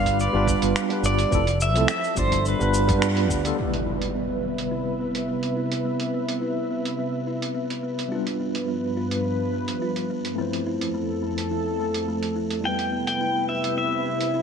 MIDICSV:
0, 0, Header, 1, 8, 480
1, 0, Start_track
1, 0, Key_signature, 0, "major"
1, 0, Tempo, 566038
1, 1124, Time_signature, 4, 2, 24, 8
1, 12229, End_track
2, 0, Start_track
2, 0, Title_t, "Pedal steel guitar"
2, 0, Program_c, 0, 26
2, 0, Note_on_c, 0, 77, 103
2, 155, Note_off_c, 0, 77, 0
2, 176, Note_on_c, 0, 74, 88
2, 617, Note_off_c, 0, 74, 0
2, 897, Note_on_c, 0, 74, 106
2, 1337, Note_off_c, 0, 74, 0
2, 1375, Note_on_c, 0, 76, 107
2, 1593, Note_off_c, 0, 76, 0
2, 1616, Note_on_c, 0, 76, 107
2, 1833, Note_off_c, 0, 76, 0
2, 1854, Note_on_c, 0, 72, 89
2, 2072, Note_off_c, 0, 72, 0
2, 2107, Note_on_c, 0, 71, 78
2, 2782, Note_off_c, 0, 71, 0
2, 10730, Note_on_c, 0, 79, 90
2, 11076, Note_off_c, 0, 79, 0
2, 11086, Note_on_c, 0, 79, 87
2, 11434, Note_off_c, 0, 79, 0
2, 11437, Note_on_c, 0, 76, 74
2, 11664, Note_off_c, 0, 76, 0
2, 11683, Note_on_c, 0, 76, 72
2, 12229, Note_off_c, 0, 76, 0
2, 12229, End_track
3, 0, Start_track
3, 0, Title_t, "Analog synth pad"
3, 0, Program_c, 1, 89
3, 0, Note_on_c, 1, 55, 81
3, 0, Note_on_c, 1, 65, 73
3, 0, Note_on_c, 1, 71, 85
3, 1108, Note_off_c, 1, 55, 0
3, 1109, Note_off_c, 1, 71, 0
3, 1110, Note_off_c, 1, 65, 0
3, 1128, Note_on_c, 1, 53, 75
3, 1128, Note_on_c, 1, 64, 75
3, 1131, Note_on_c, 1, 69, 79
3, 2076, Note_off_c, 1, 53, 0
3, 2076, Note_off_c, 1, 64, 0
3, 2078, Note_off_c, 1, 69, 0
3, 2084, Note_on_c, 1, 55, 82
3, 2084, Note_on_c, 1, 65, 69
3, 2086, Note_on_c, 1, 71, 84
3, 3034, Note_off_c, 1, 55, 0
3, 3034, Note_off_c, 1, 65, 0
3, 3035, Note_off_c, 1, 71, 0
3, 3046, Note_on_c, 1, 71, 64
3, 3047, Note_on_c, 1, 48, 72
3, 3048, Note_on_c, 1, 76, 73
3, 6851, Note_off_c, 1, 48, 0
3, 6851, Note_off_c, 1, 71, 0
3, 6852, Note_off_c, 1, 76, 0
3, 6884, Note_on_c, 1, 53, 69
3, 6885, Note_on_c, 1, 43, 75
3, 6885, Note_on_c, 1, 71, 81
3, 8785, Note_off_c, 1, 43, 0
3, 8785, Note_off_c, 1, 53, 0
3, 8785, Note_off_c, 1, 71, 0
3, 8809, Note_on_c, 1, 41, 72
3, 8811, Note_on_c, 1, 69, 81
3, 10707, Note_off_c, 1, 41, 0
3, 10708, Note_off_c, 1, 69, 0
3, 10729, Note_on_c, 1, 64, 78
3, 10729, Note_on_c, 1, 71, 64
3, 10731, Note_on_c, 1, 48, 72
3, 12229, Note_off_c, 1, 48, 0
3, 12229, Note_off_c, 1, 64, 0
3, 12229, Note_off_c, 1, 71, 0
3, 12229, End_track
4, 0, Start_track
4, 0, Title_t, "Tine electric piano"
4, 0, Program_c, 2, 4
4, 0, Note_on_c, 2, 55, 80
4, 0, Note_on_c, 2, 59, 71
4, 0, Note_on_c, 2, 62, 71
4, 0, Note_on_c, 2, 65, 74
4, 0, Note_on_c, 2, 74, 90
4, 249, Note_off_c, 2, 55, 0
4, 253, Note_off_c, 2, 59, 0
4, 256, Note_off_c, 2, 62, 0
4, 262, Note_off_c, 2, 65, 0
4, 264, Note_off_c, 2, 74, 0
4, 278, Note_on_c, 2, 55, 91
4, 284, Note_on_c, 2, 59, 84
4, 294, Note_on_c, 2, 62, 88
4, 299, Note_on_c, 2, 65, 90
4, 307, Note_on_c, 2, 71, 100
4, 734, Note_off_c, 2, 55, 0
4, 737, Note_off_c, 2, 59, 0
4, 742, Note_off_c, 2, 62, 0
4, 744, Note_off_c, 2, 65, 0
4, 748, Note_off_c, 2, 71, 0
4, 757, Note_on_c, 2, 55, 84
4, 764, Note_on_c, 2, 59, 74
4, 768, Note_on_c, 2, 62, 73
4, 776, Note_on_c, 2, 65, 75
4, 788, Note_on_c, 2, 71, 86
4, 1090, Note_off_c, 2, 55, 0
4, 1093, Note_off_c, 2, 59, 0
4, 1095, Note_off_c, 2, 62, 0
4, 1099, Note_off_c, 2, 65, 0
4, 1105, Note_off_c, 2, 71, 0
4, 1112, Note_on_c, 2, 53, 99
4, 1116, Note_on_c, 2, 57, 82
4, 1127, Note_on_c, 2, 60, 87
4, 1135, Note_on_c, 2, 64, 87
4, 1142, Note_on_c, 2, 69, 104
4, 1201, Note_off_c, 2, 53, 0
4, 1203, Note_off_c, 2, 57, 0
4, 1208, Note_off_c, 2, 60, 0
4, 1213, Note_off_c, 2, 64, 0
4, 1216, Note_off_c, 2, 69, 0
4, 1478, Note_on_c, 2, 53, 87
4, 1483, Note_on_c, 2, 57, 79
4, 1494, Note_on_c, 2, 60, 78
4, 1499, Note_on_c, 2, 64, 77
4, 1510, Note_on_c, 2, 69, 89
4, 1604, Note_off_c, 2, 53, 0
4, 1606, Note_off_c, 2, 57, 0
4, 1612, Note_off_c, 2, 60, 0
4, 1615, Note_off_c, 2, 64, 0
4, 1620, Note_off_c, 2, 69, 0
4, 1825, Note_on_c, 2, 55, 79
4, 1836, Note_on_c, 2, 59, 78
4, 1842, Note_on_c, 2, 62, 72
4, 1850, Note_on_c, 2, 65, 74
4, 1859, Note_on_c, 2, 74, 94
4, 2171, Note_off_c, 2, 55, 0
4, 2176, Note_off_c, 2, 59, 0
4, 2179, Note_off_c, 2, 62, 0
4, 2183, Note_off_c, 2, 65, 0
4, 2188, Note_off_c, 2, 74, 0
4, 2194, Note_on_c, 2, 55, 93
4, 2202, Note_on_c, 2, 59, 84
4, 2213, Note_on_c, 2, 62, 84
4, 2220, Note_on_c, 2, 65, 81
4, 2227, Note_on_c, 2, 71, 102
4, 2417, Note_off_c, 2, 55, 0
4, 2421, Note_off_c, 2, 59, 0
4, 2426, Note_off_c, 2, 62, 0
4, 2430, Note_off_c, 2, 65, 0
4, 2433, Note_off_c, 2, 71, 0
4, 2435, Note_on_c, 2, 55, 86
4, 2443, Note_on_c, 2, 59, 82
4, 2448, Note_on_c, 2, 62, 81
4, 2459, Note_on_c, 2, 65, 86
4, 2465, Note_on_c, 2, 71, 96
4, 2769, Note_off_c, 2, 55, 0
4, 2773, Note_off_c, 2, 59, 0
4, 2775, Note_off_c, 2, 62, 0
4, 2780, Note_on_c, 2, 55, 70
4, 2781, Note_off_c, 2, 65, 0
4, 2784, Note_off_c, 2, 71, 0
4, 2787, Note_on_c, 2, 59, 71
4, 2796, Note_on_c, 2, 62, 65
4, 2803, Note_on_c, 2, 65, 64
4, 2810, Note_on_c, 2, 71, 84
4, 2888, Note_off_c, 2, 55, 0
4, 2892, Note_off_c, 2, 59, 0
4, 2896, Note_off_c, 2, 62, 0
4, 2899, Note_off_c, 2, 65, 0
4, 2903, Note_off_c, 2, 71, 0
4, 2913, Note_on_c, 2, 55, 79
4, 2921, Note_on_c, 2, 59, 78
4, 2927, Note_on_c, 2, 62, 75
4, 2935, Note_on_c, 2, 65, 77
4, 2941, Note_on_c, 2, 69, 95
4, 3001, Note_off_c, 2, 55, 0
4, 3011, Note_on_c, 2, 55, 67
4, 3012, Note_off_c, 2, 59, 0
4, 3015, Note_off_c, 2, 62, 0
4, 3019, Note_off_c, 2, 65, 0
4, 3022, Note_off_c, 2, 69, 0
4, 3025, Note_on_c, 2, 59, 57
4, 3057, Note_on_c, 2, 64, 56
4, 3070, Note_on_c, 2, 71, 72
4, 6840, Note_off_c, 2, 55, 0
4, 6847, Note_off_c, 2, 59, 0
4, 6855, Note_on_c, 2, 55, 65
4, 6863, Note_off_c, 2, 64, 0
4, 6866, Note_on_c, 2, 59, 60
4, 6870, Note_off_c, 2, 71, 0
4, 6884, Note_on_c, 2, 62, 61
4, 6898, Note_on_c, 2, 65, 62
4, 6912, Note_on_c, 2, 71, 68
4, 8762, Note_off_c, 2, 55, 0
4, 8768, Note_off_c, 2, 59, 0
4, 8770, Note_on_c, 2, 57, 62
4, 8777, Note_off_c, 2, 62, 0
4, 8784, Note_off_c, 2, 65, 0
4, 8787, Note_on_c, 2, 60, 60
4, 8791, Note_off_c, 2, 71, 0
4, 8803, Note_on_c, 2, 64, 58
4, 8817, Note_on_c, 2, 53, 56
4, 8830, Note_on_c, 2, 72, 67
4, 10679, Note_off_c, 2, 57, 0
4, 10688, Note_off_c, 2, 60, 0
4, 10691, Note_on_c, 2, 55, 65
4, 10696, Note_off_c, 2, 64, 0
4, 10703, Note_off_c, 2, 53, 0
4, 10707, Note_on_c, 2, 59, 61
4, 10710, Note_off_c, 2, 72, 0
4, 10737, Note_on_c, 2, 64, 61
4, 10755, Note_on_c, 2, 71, 70
4, 12229, Note_off_c, 2, 55, 0
4, 12229, Note_off_c, 2, 59, 0
4, 12229, Note_off_c, 2, 64, 0
4, 12229, Note_off_c, 2, 71, 0
4, 12229, End_track
5, 0, Start_track
5, 0, Title_t, "Kalimba"
5, 0, Program_c, 3, 108
5, 3041, Note_on_c, 3, 59, 72
5, 3163, Note_off_c, 3, 59, 0
5, 3276, Note_on_c, 3, 64, 62
5, 3394, Note_off_c, 3, 64, 0
5, 3514, Note_on_c, 3, 59, 66
5, 3633, Note_off_c, 3, 59, 0
5, 3759, Note_on_c, 3, 59, 61
5, 3882, Note_off_c, 3, 59, 0
5, 3996, Note_on_c, 3, 64, 67
5, 4114, Note_off_c, 3, 64, 0
5, 4241, Note_on_c, 3, 59, 63
5, 4356, Note_off_c, 3, 59, 0
5, 4481, Note_on_c, 3, 59, 68
5, 4603, Note_off_c, 3, 59, 0
5, 4720, Note_on_c, 3, 64, 61
5, 4836, Note_off_c, 3, 64, 0
5, 4962, Note_on_c, 3, 59, 68
5, 5077, Note_off_c, 3, 59, 0
5, 5206, Note_on_c, 3, 59, 67
5, 5325, Note_off_c, 3, 59, 0
5, 5442, Note_on_c, 3, 64, 69
5, 5557, Note_off_c, 3, 64, 0
5, 5687, Note_on_c, 3, 59, 65
5, 5799, Note_off_c, 3, 59, 0
5, 5926, Note_on_c, 3, 59, 66
5, 6045, Note_off_c, 3, 59, 0
5, 6166, Note_on_c, 3, 64, 64
5, 6279, Note_off_c, 3, 64, 0
5, 6399, Note_on_c, 3, 59, 68
5, 6516, Note_off_c, 3, 59, 0
5, 6641, Note_on_c, 3, 59, 65
5, 6763, Note_off_c, 3, 59, 0
5, 6884, Note_on_c, 3, 65, 74
5, 6998, Note_off_c, 3, 65, 0
5, 7123, Note_on_c, 3, 59, 66
5, 7238, Note_off_c, 3, 59, 0
5, 7362, Note_on_c, 3, 59, 70
5, 7483, Note_off_c, 3, 59, 0
5, 7605, Note_on_c, 3, 65, 67
5, 7718, Note_off_c, 3, 65, 0
5, 7846, Note_on_c, 3, 59, 65
5, 7959, Note_off_c, 3, 59, 0
5, 8087, Note_on_c, 3, 59, 63
5, 8205, Note_off_c, 3, 59, 0
5, 8325, Note_on_c, 3, 65, 67
5, 8438, Note_off_c, 3, 65, 0
5, 8566, Note_on_c, 3, 59, 66
5, 8679, Note_off_c, 3, 59, 0
5, 8804, Note_on_c, 3, 57, 76
5, 8924, Note_off_c, 3, 57, 0
5, 9043, Note_on_c, 3, 64, 66
5, 9158, Note_off_c, 3, 64, 0
5, 9277, Note_on_c, 3, 57, 66
5, 9394, Note_off_c, 3, 57, 0
5, 9520, Note_on_c, 3, 57, 64
5, 9642, Note_off_c, 3, 57, 0
5, 9762, Note_on_c, 3, 64, 63
5, 9877, Note_off_c, 3, 64, 0
5, 10003, Note_on_c, 3, 57, 62
5, 10118, Note_off_c, 3, 57, 0
5, 10244, Note_on_c, 3, 57, 69
5, 10364, Note_off_c, 3, 57, 0
5, 10479, Note_on_c, 3, 64, 62
5, 10595, Note_off_c, 3, 64, 0
5, 10716, Note_on_c, 3, 64, 77
5, 10840, Note_off_c, 3, 64, 0
5, 10956, Note_on_c, 3, 59, 66
5, 11080, Note_off_c, 3, 59, 0
5, 11201, Note_on_c, 3, 64, 70
5, 11316, Note_off_c, 3, 64, 0
5, 11443, Note_on_c, 3, 64, 63
5, 11564, Note_off_c, 3, 64, 0
5, 11678, Note_on_c, 3, 59, 64
5, 11801, Note_off_c, 3, 59, 0
5, 11919, Note_on_c, 3, 64, 66
5, 12035, Note_off_c, 3, 64, 0
5, 12160, Note_on_c, 3, 64, 72
5, 12229, Note_off_c, 3, 64, 0
5, 12229, End_track
6, 0, Start_track
6, 0, Title_t, "Fretless electric bass"
6, 0, Program_c, 4, 35
6, 0, Note_on_c, 4, 31, 86
6, 227, Note_off_c, 4, 31, 0
6, 289, Note_on_c, 4, 31, 75
6, 451, Note_off_c, 4, 31, 0
6, 530, Note_on_c, 4, 31, 82
6, 608, Note_off_c, 4, 31, 0
6, 875, Note_on_c, 4, 31, 93
6, 1050, Note_off_c, 4, 31, 0
6, 1125, Note_on_c, 4, 29, 101
6, 1487, Note_off_c, 4, 29, 0
6, 1487, Note_on_c, 4, 36, 87
6, 1567, Note_off_c, 4, 36, 0
6, 1842, Note_on_c, 4, 31, 88
6, 2147, Note_off_c, 4, 31, 0
6, 2212, Note_on_c, 4, 31, 77
6, 2451, Note_on_c, 4, 43, 90
6, 2464, Note_off_c, 4, 31, 0
6, 2803, Note_off_c, 4, 43, 0
6, 2803, Note_on_c, 4, 38, 79
6, 2973, Note_off_c, 4, 38, 0
6, 12229, End_track
7, 0, Start_track
7, 0, Title_t, "Impact"
7, 0, Program_c, 5, 103
7, 3041, Note_on_c, 5, 60, 57
7, 4963, Note_off_c, 5, 60, 0
7, 12229, End_track
8, 0, Start_track
8, 0, Title_t, "Drums"
8, 49, Note_on_c, 9, 36, 59
8, 52, Note_on_c, 9, 42, 55
8, 55, Note_on_c, 9, 69, 30
8, 134, Note_off_c, 9, 36, 0
8, 137, Note_off_c, 9, 42, 0
8, 139, Note_off_c, 9, 69, 0
8, 167, Note_on_c, 9, 69, 42
8, 251, Note_off_c, 9, 69, 0
8, 403, Note_on_c, 9, 36, 105
8, 407, Note_on_c, 9, 69, 66
8, 488, Note_off_c, 9, 36, 0
8, 492, Note_off_c, 9, 69, 0
8, 527, Note_on_c, 9, 42, 58
8, 529, Note_on_c, 9, 69, 31
8, 611, Note_off_c, 9, 42, 0
8, 614, Note_off_c, 9, 69, 0
8, 643, Note_on_c, 9, 26, 96
8, 645, Note_on_c, 9, 69, 39
8, 728, Note_off_c, 9, 26, 0
8, 730, Note_off_c, 9, 69, 0
8, 765, Note_on_c, 9, 42, 42
8, 850, Note_off_c, 9, 42, 0
8, 881, Note_on_c, 9, 69, 68
8, 966, Note_off_c, 9, 69, 0
8, 1006, Note_on_c, 9, 42, 51
8, 1008, Note_on_c, 9, 69, 28
8, 1091, Note_off_c, 9, 42, 0
8, 1093, Note_off_c, 9, 69, 0
8, 1121, Note_on_c, 9, 69, 46
8, 1124, Note_on_c, 9, 36, 109
8, 1206, Note_off_c, 9, 69, 0
8, 1208, Note_off_c, 9, 36, 0
8, 1248, Note_on_c, 9, 42, 45
8, 1250, Note_on_c, 9, 69, 29
8, 1333, Note_off_c, 9, 42, 0
8, 1335, Note_off_c, 9, 69, 0
8, 1362, Note_on_c, 9, 69, 73
8, 1447, Note_off_c, 9, 69, 0
8, 1489, Note_on_c, 9, 42, 55
8, 1491, Note_on_c, 9, 69, 30
8, 1574, Note_off_c, 9, 42, 0
8, 1576, Note_off_c, 9, 69, 0
8, 1596, Note_on_c, 9, 26, 98
8, 1598, Note_on_c, 9, 69, 40
8, 1681, Note_off_c, 9, 26, 0
8, 1683, Note_off_c, 9, 69, 0
8, 1728, Note_on_c, 9, 69, 28
8, 1813, Note_off_c, 9, 69, 0
8, 1835, Note_on_c, 9, 69, 66
8, 1843, Note_on_c, 9, 36, 104
8, 1920, Note_off_c, 9, 69, 0
8, 1928, Note_off_c, 9, 36, 0
8, 1968, Note_on_c, 9, 42, 57
8, 1970, Note_on_c, 9, 36, 60
8, 1970, Note_on_c, 9, 69, 31
8, 2052, Note_off_c, 9, 42, 0
8, 2055, Note_off_c, 9, 36, 0
8, 2055, Note_off_c, 9, 69, 0
8, 2080, Note_on_c, 9, 69, 41
8, 2165, Note_off_c, 9, 69, 0
8, 2210, Note_on_c, 9, 69, 27
8, 2295, Note_off_c, 9, 69, 0
8, 2321, Note_on_c, 9, 69, 71
8, 2406, Note_off_c, 9, 69, 0
8, 2448, Note_on_c, 9, 42, 57
8, 2450, Note_on_c, 9, 36, 98
8, 2450, Note_on_c, 9, 69, 33
8, 2533, Note_off_c, 9, 42, 0
8, 2535, Note_off_c, 9, 36, 0
8, 2535, Note_off_c, 9, 69, 0
8, 2562, Note_on_c, 9, 26, 97
8, 2564, Note_on_c, 9, 69, 39
8, 2647, Note_off_c, 9, 26, 0
8, 2649, Note_off_c, 9, 69, 0
8, 2687, Note_on_c, 9, 42, 41
8, 2772, Note_off_c, 9, 42, 0
8, 2802, Note_on_c, 9, 69, 68
8, 2803, Note_on_c, 9, 36, 60
8, 2887, Note_off_c, 9, 69, 0
8, 2888, Note_off_c, 9, 36, 0
8, 2925, Note_on_c, 9, 42, 54
8, 2927, Note_on_c, 9, 69, 29
8, 3010, Note_off_c, 9, 42, 0
8, 3012, Note_off_c, 9, 69, 0
8, 3168, Note_on_c, 9, 42, 36
8, 3252, Note_off_c, 9, 42, 0
8, 3405, Note_on_c, 9, 42, 45
8, 3490, Note_off_c, 9, 42, 0
8, 3887, Note_on_c, 9, 42, 50
8, 3972, Note_off_c, 9, 42, 0
8, 4366, Note_on_c, 9, 42, 48
8, 4451, Note_off_c, 9, 42, 0
8, 4603, Note_on_c, 9, 42, 36
8, 4688, Note_off_c, 9, 42, 0
8, 4847, Note_on_c, 9, 42, 48
8, 4932, Note_off_c, 9, 42, 0
8, 5085, Note_on_c, 9, 42, 39
8, 5170, Note_off_c, 9, 42, 0
8, 5330, Note_on_c, 9, 42, 47
8, 5415, Note_off_c, 9, 42, 0
8, 5813, Note_on_c, 9, 42, 47
8, 5898, Note_off_c, 9, 42, 0
8, 6295, Note_on_c, 9, 42, 48
8, 6380, Note_off_c, 9, 42, 0
8, 6533, Note_on_c, 9, 42, 36
8, 6617, Note_off_c, 9, 42, 0
8, 6774, Note_on_c, 9, 42, 44
8, 6859, Note_off_c, 9, 42, 0
8, 7010, Note_on_c, 9, 42, 38
8, 7095, Note_off_c, 9, 42, 0
8, 7249, Note_on_c, 9, 42, 42
8, 7334, Note_off_c, 9, 42, 0
8, 7728, Note_on_c, 9, 42, 46
8, 7813, Note_off_c, 9, 42, 0
8, 8208, Note_on_c, 9, 42, 50
8, 8293, Note_off_c, 9, 42, 0
8, 8447, Note_on_c, 9, 42, 34
8, 8532, Note_off_c, 9, 42, 0
8, 8690, Note_on_c, 9, 42, 44
8, 8775, Note_off_c, 9, 42, 0
8, 8933, Note_on_c, 9, 42, 36
8, 9017, Note_off_c, 9, 42, 0
8, 9170, Note_on_c, 9, 42, 44
8, 9255, Note_off_c, 9, 42, 0
8, 9649, Note_on_c, 9, 42, 45
8, 9734, Note_off_c, 9, 42, 0
8, 10129, Note_on_c, 9, 42, 44
8, 10214, Note_off_c, 9, 42, 0
8, 10368, Note_on_c, 9, 42, 34
8, 10452, Note_off_c, 9, 42, 0
8, 10604, Note_on_c, 9, 42, 44
8, 10689, Note_off_c, 9, 42, 0
8, 10844, Note_on_c, 9, 42, 35
8, 10929, Note_off_c, 9, 42, 0
8, 11086, Note_on_c, 9, 42, 44
8, 11171, Note_off_c, 9, 42, 0
8, 11567, Note_on_c, 9, 42, 46
8, 11652, Note_off_c, 9, 42, 0
8, 12047, Note_on_c, 9, 42, 45
8, 12131, Note_off_c, 9, 42, 0
8, 12229, End_track
0, 0, End_of_file